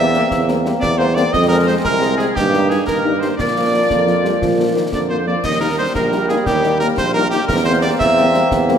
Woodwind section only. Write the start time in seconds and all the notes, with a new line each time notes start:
Already playing: E5
0.82 D5
0.98 C5
1.17 D5
1.33 D#5
1.51 A#4
1.68 C5
1.84 A#4
2.18 G#4
2.36 G4
2.70 G#4
2.88 A#4
3.21 C5
3.39 D5
4.94 D5
5.11 C5
5.27 D5
5.44 D#5
5.63 A#4
5.79 C5
5.96 A#4
6.29 G#4
6.46 G4
6.81 A#4
6.98 C5
7.15 A#4
7.32 G4
7.49 A#4
7.66 C5
7.84 D5
7.99 E5